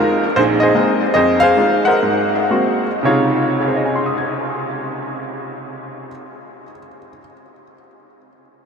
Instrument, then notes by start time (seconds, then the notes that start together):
upright piano
Already playing: G#4 A#4 C5
0.00 G#3 D#4 F4
0.36 A#1 D#4 G#4 C5
0.60 G#4 C5 D#5
0.75 G#3 A#3 C4 D#4
1.14 F2 G#4 C5 D#5
1.40 G#4 C5 F5
1.57 G#3 D#4 F4
1.85 A#4 C5 F#5
2.03 G#2
2.50 G#3 A#3 C4 F#4
3.03 C3 C#3 D#4 F4 C#5
3.61 G#4
3.68 C5
3.76 D#5
3.85 G#5
3.95 C6
4.06 D#6
4.18 G#6